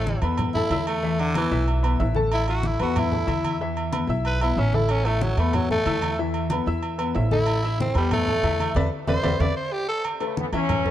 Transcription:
Already playing: upright bass A1, tenor saxophone A3, upright piano E4 E5 E6
0.07 high conga
0.22 upright bass E2, upright piano B3 B4 B5, high conga, low agogo
0.38 high conga, low conga, low agogo
0.54 upright piano A3 A4 A5, tenor saxophone E4, high conga, low conga
0.70 upright bass E2, upright piano E4 E5 E6, high conga, low timbale, low agogo
0.87 tenor saxophone A3, low agogo
1.03 upright piano E3 E4 E5, high conga
1.19 tenor saxophone D3, high conga, low agogo
1.35 tenor saxophone E3, upright piano B3 B4 B5, high conga, low agogo
1.51 upright bass B1, upright piano E4 E5 E6
1.67 high conga, low agogo
1.83 upright piano B3 B4 B5, high conga, low agogo
1.99 upright bass A1, upright piano E4 E5 E6, high conga, low timbale
2.15 upright piano A3 A4 A5, high conga
2.31 tenor saxophone E4, high conga, low agogo
2.47 upright piano E4 E5 E6, tenor saxophone F#4, high conga, low agogo
2.63 tenor saxophone E4, high conga
2.80 upright bass E2, upright piano B3 B4 B5, tenor saxophone F#4, high conga, low agogo
2.96 tenor saxophone E4, high conga, low conga, low agogo
3.12 upright piano A3 A4 A5, high conga, low conga
3.27 upright bass E2, upright piano E4 E5 E6, high conga, low agogo
3.44 high conga, low agogo
3.60 upright piano E3 E4 E5, high conga
3.76 high conga, low agogo
3.92 upright piano B3 B4 B5, high conga, low agogo
4.07 upright bass B1, upright piano E4 E5 E6, high conga
4.25 tenor saxophone B4, high conga, low agogo
4.41 upright piano B3 B4 B5, tenor saxophone E4, high conga, low agogo
4.57 upright bass A1, tenor saxophone C#4, upright piano E4 E5 E6, high conga
4.73 upright piano A3 A4 A5, tenor saxophone E4, high conga
4.89 tenor saxophone C#4, high conga, low agogo
5.05 tenor saxophone A3, upright piano E4 E5 E6, high conga, low agogo
5.21 tenor saxophone F#3, high conga
5.37 upright bass E2, tenor saxophone A3, upright piano B3 B4 B5, high conga, low agogo
5.53 tenor saxophone F#3, high conga, low conga, low agogo
5.70 upright piano A3 A4 A5, tenor saxophone A3, high conga, low conga
5.85 upright bass E2, upright piano E4 E5 E6, high conga, low timbale, low agogo
6.02 high conga, low agogo
6.19 upright piano E3 E4 E5, high conga
6.34 high conga, low agogo
6.50 upright piano B3 B4 B5, high conga, low agogo
6.66 upright bass E2, upright piano E4 E5 E6, high conga
6.83 high conga, low agogo
6.98 upright piano B3 B4 B5, high conga, low agogo
7.15 upright bass A1, upright piano E4 E5 E6, high conga, low timbale
7.31 upright piano A3 A4 A5, tenor saxophone E4, high conga
7.46 high conga, low agogo
7.63 upright piano E4 E5 E6, high conga, low agogo
7.80 tenor saxophone C4, high conga
7.95 upright bass E2, tenor saxophone G3, upright piano B3 B4 B5, high conga, low agogo
8.11 tenor saxophone A3, high conga, low conga, low agogo
8.28 upright piano A3 A4 A5, high conga, low conga
8.43 upright bass E2, upright piano E4 E5 E6, high conga, low agogo
8.59 high conga, low agogo
8.75 upright bass E2, upright piano B4 D5 E5, high conga, high timbale
9.07 upright bass E2, upright piano B4 D5 E5, tenor saxophone C5, high conga, high timbale
9.23 upright bass E2, upright piano B4 D5 E5, high conga, high timbale
9.40 upright bass E2, upright piano B4 D5 E5, tenor saxophone D5, high conga, high timbale
9.56 tenor saxophone C5
9.72 tenor saxophone G4
9.88 tenor saxophone A4
10.05 high conga, low agogo
10.20 trombone section C#3, upright piano A3 A4 B4, high conga, low agogo
10.25 trombone section A3
10.37 trombone section E3 B3, high conga
10.52 upright bass E2, upright piano E3 E4 E5, trombone section E3 C#4, high conga, low agogo
10.69 high conga, low conga, low agogo
10.85 upright piano A3 A4 B4, high conga, low conga

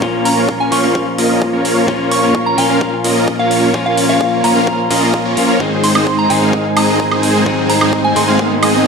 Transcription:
Already playing: analog synth pad C#4 F4 A#4 F5
0.01 analog synth bass A#1, clean electric guitar A#2 F3 A#3 C#4 F4, supersaw synth A#3 C#4 F4 A#4 C#5, kick
0.25 synth bell A#5, open hi-hat
0.37 analog synth bass A#1, supersaw synth A#3 C#4 F4 A#4 C#5
0.49 kick
0.60 synth bell G#5
0.71 clean electric guitar A#2 F3 A#3 C#4 F4, synth bell C#6, open hi-hat
0.83 analog synth bass A#1, supersaw synth A#3 C#4 F4 A#4 F5, synth bell C#6
0.95 kick
1.18 analog synth bass A#1, supersaw synth A#3 C#4 F4 A#4 D#5, open hi-hat
1.42 kick
1.53 analog synth bass A#1, supersaw synth A#3 C#4 F4 A#4 C#5
1.65 open hi-hat
1.87 analog synth bass A#1, clean electric guitar A#2 F3 A#3 C#4 F4, supersaw synth A#3 C#4 F4 A#4 C#5, kick
2.11 synth bell C#6, open hi-hat
2.23 analog synth bass A#1, supersaw synth A#3 C#4 F4 A#4 C#5
2.35 kick
2.46 synth bell A#5
2.57 clean electric guitar A#2 F3 A#3 C#4 F4, synth bell G#5, open hi-hat
2.69 analog synth bass A#1, supersaw synth A#3 C#4 F4 A#4 F5
2.81 kick
3.04 analog synth bass A#1, supersaw synth A#3 C#4 F4 A#4 D#5, open hi-hat
3.28 kick
3.39 analog synth bass A#1, supersaw synth A#3 C#4 F4 A#4 C#5, synth bell F5
3.51 open hi-hat
3.73 analog synth bass A#1, clean electric guitar A#2 F3 A#3 C#4 F4, supersaw synth A#3 C#4 F4 A#4 C#5, kick
3.86 synth bell F5
3.97 open hi-hat
4.09 analog synth bass A#1, supersaw synth A#3 C#4 F4 A#4 C#5, synth bell F5
4.21 kick
4.43 clean electric guitar A#2 F3 A#3 C#4 F4, synth bell A#5, open hi-hat
4.56 analog synth bass A#1, supersaw synth A#3 C#4 F4 A#4 F5
4.67 kick
4.90 analog synth bass A#1, clean electric guitar A#2 F3 A#3 C#4 F4, supersaw synth A#3 C#4 F4 A#4 D#5, open hi-hat
5.14 kick
5.25 analog synth bass A#1, supersaw synth A#3 C#4 F4 A#4 C#5
5.36 clean electric guitar F3 A#3 C#4 F4, open hi-hat
5.59 analog synth bass G#1, clean electric guitar G#2 D#3 G#3 C4 D#4, supersaw synth G#3 C4 D#4 G#4 C5, analog synth pad D#4 G#4 C5 G#5, kick, riser
5.84 synth bell C6, open hi-hat
5.95 analog synth bass G#1, supersaw synth G#3 C4 D#4 G#4 C5, high woodblock
6.07 kick
6.18 synth bell A#5
6.29 clean electric guitar G#2 D#3 G#3 C4 D#4, synth bell G#5, open hi-hat
6.42 analog synth bass G#1, supersaw synth G#3 C4 D#4 G#4 F5
6.53 kick
6.76 analog synth bass G#1, supersaw synth G#3 C4 D#4 G#4 D#5, synth bell A#5, open hi-hat, high woodblock
7.00 kick
7.11 analog synth bass G#1, supersaw synth G#3 C4 D#4 G#4 C5, high woodblock
7.23 open hi-hat
7.45 analog synth bass G#1, clean electric guitar G#2 D#3 G#3 C4 D#4, supersaw synth G#3 C4 D#4 G#4 C5, kick
7.70 synth bell A#5, open hi-hat
7.81 analog synth bass G#1, supersaw synth G#3 C4 D#4 G#4 C5, high woodblock
7.93 kick
8.04 synth bell G#5
8.15 clean electric guitar G#2 D#3 G#3 C4 D#4, synth bell C6, open hi-hat
8.28 analog synth bass G#1, supersaw synth G#3 C4 D#4 G#4 F5, synth bell C6
8.39 kick
8.63 analog synth bass G#1, supersaw synth G#3 C4 D#4 G#4 D#5, open hi-hat, high woodblock

